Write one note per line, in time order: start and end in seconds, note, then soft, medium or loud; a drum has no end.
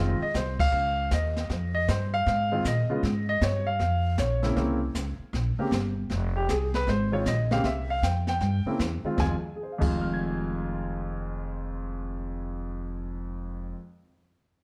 0.00 0.19 F1 medium
0.00 0.19 D#3 medium
0.00 0.19 G#3 medium
0.00 0.19 C4 medium
0.00 0.19 F4 medium
0.00 0.18 D#5 medium
0.20 0.35 D#5 medium
0.20 muted upright bass stroke soft
0.34 0.71 C2 medium
0.34 0.59 C5 medium
0.34 kick soft
0.34 snare medium
0.34 hi-hat pedal medium
0.60 1.08 F5 loud
0.60 kick medium
0.60 crash medium
0.72 1.09 C#2 medium
0.72 brush sweep soft
1.11 1.48 D#2 medium
1.11 1.71 D#5 medium
1.11 kick soft
1.11 snare medium
1.11 hi-hat pedal medium
1.36 snare soft
1.50 1.87 F2 medium
1.50 brush sweep soft
1.50 kick soft
1.50 snare soft
1.75 1.87 D#5 medium
1.88 2.25 G2 medium
1.88 2.12 C5 medium
1.88 kick soft
1.88 snare medium
1.88 hi-hat pedal soft
2.14 2.61 F5 loud
2.26 2.63 G#2 medium
2.26 brush sweep soft
2.26 kick soft
2.26 snare soft
2.52 2.63 D#3 medium
2.52 2.64 G#3 medium
2.52 2.64 C4 medium
2.52 2.64 F4 medium
2.64 2.88 A#2 medium
2.64 3.25 D#5 medium
2.64 kick soft
2.64 snare medium
2.64 hi-hat pedal medium
2.89 3.02 C#3 medium
2.89 3.02 G#3 medium
2.89 3.02 B3 medium
2.89 3.02 F4 medium
2.89 muted upright bass stroke soft
3.03 3.40 G#2 medium
3.03 brush sweep soft
3.03 kick soft
3.03 snare soft
3.29 3.41 D#5 medium
3.41 3.78 G2 medium
3.41 3.66 C#5 medium
3.41 kick soft
3.41 snare medium
3.41 hi-hat pedal medium
3.67 4.15 F5 medium
3.79 4.17 F2 medium
3.79 brush sweep soft
3.79 kick soft
3.79 snare soft
4.18 4.55 A#1 medium
4.18 4.78 C#5 medium
4.18 kick soft
4.18 snare medium
4.18 hi-hat pedal medium
4.42 4.54 C#3 medium
4.42 4.55 A#3 medium
4.42 4.55 C4 medium
4.42 4.55 E4 medium
4.42 snare soft
4.56 4.94 C2 medium
4.56 4.78 C#3 medium
4.56 4.79 A#3 medium
4.56 4.79 C4 medium
4.56 4.79 E4 medium
4.56 brush sweep soft
4.56 kick soft
4.56 snare soft
4.95 5.18 C#2 medium
4.95 kick soft
4.95 snare medium
4.95 hi-hat pedal soft
5.18 muted upright bass stroke soft
5.33 5.56 A#1 medium
5.33 brush sweep medium
5.33 kick soft
5.33 snare soft
5.57 5.71 C#3 medium
5.57 5.71 A#3 medium
5.57 5.71 C4 medium
5.57 5.71 G4 medium
5.57 muted upright bass stroke soft
5.71 6.09 G1 medium
5.71 kick soft
5.71 snare medium
5.71 hi-hat pedal soft
6.10 6.47 F1 medium
6.10 brush sweep soft
6.10 kick soft
6.10 snare soft
6.36 6.49 G4 medium
6.48 6.86 C2 medium
6.48 6.74 G#4 medium
6.48 kick soft
6.48 snare medium
6.48 hi-hat pedal soft
6.74 6.87 B4 medium
6.74 snare soft
6.87 7.24 G#1 medium
6.87 7.12 C5 medium
6.87 brush sweep soft
6.87 kick soft
6.87 snare soft
7.12 7.24 D#3 medium
7.12 7.24 G#3 medium
7.12 7.24 C4 medium
7.12 7.24 F4 medium
7.12 7.26 C#5 medium
7.26 7.63 A#1 medium
7.26 7.50 D#5 medium
7.26 kick soft
7.26 snare medium
7.26 hi-hat pedal medium
7.51 7.63 C#3 medium
7.51 7.63 A#3 medium
7.51 7.63 C4 medium
7.51 7.63 G4 medium
7.51 7.64 F5 medium
7.51 snare soft
7.64 8.01 C2 medium
7.64 7.89 E5 medium
7.64 brush sweep medium
7.64 kick soft
7.64 snare soft
7.90 8.03 F5 medium
8.02 8.39 F2 medium
8.02 8.27 G5 medium
8.02 kick soft
8.02 snare medium
8.02 hi-hat pedal medium
8.27 8.76 G5 medium
8.27 snare soft
8.40 8.64 G2 medium
8.40 brush sweep soft
8.40 kick soft
8.40 snare soft
8.65 8.78 C#3 medium
8.65 8.79 A#3 medium
8.65 8.78 C4 medium
8.65 8.78 E4 medium
8.65 muted upright bass stroke soft
8.79 9.02 E2 medium
8.79 kick soft
8.79 snare medium
8.79 hi-hat pedal medium
9.03 9.16 D#3 medium
9.03 9.17 G#3 medium
9.03 9.17 C4 medium
9.03 9.17 F4 medium
9.03 muted upright bass stroke soft
9.17 9.31 F1 medium
9.17 9.32 F2 medium
9.17 9.33 D#3 medium
9.17 9.33 G#3 medium
9.17 9.34 F4 medium
9.17 9.33 G#5 medium
9.17 kick medium
9.17 snare medium
9.56 13.72 G#4 soft
9.63 13.75 C5 soft
9.72 13.80 F5 soft
9.78 13.72 F1 medium
9.78 13.74 F2 medium
9.78 13.75 D#3 medium
9.78 13.75 G#3 medium
9.78 13.76 F4 medium
9.78 13.84 G#5 soft
9.78 kick medium
9.78 crash medium
9.91 13.89 C6 soft
10.01 13.94 F6 soft
10.13 14.00 G#6 soft